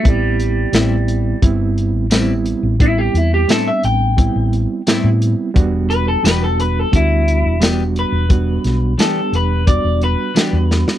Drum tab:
HH |x-x-x-x-x-x-x-x-|x-x-x-x-x-x-x-x-|x-x-x-x-x-x-x-x-|x-x-x-x-x-x-x---|
TB |----x-------x---|----x-------x---|----x-------x---|----x-------x---|
SD |----o-------o---|----o-------o---|----o-------o---|--o-o-------o-oo|
BD |o-------o-------|o-------o-------|o-------o-------|o-------o-------|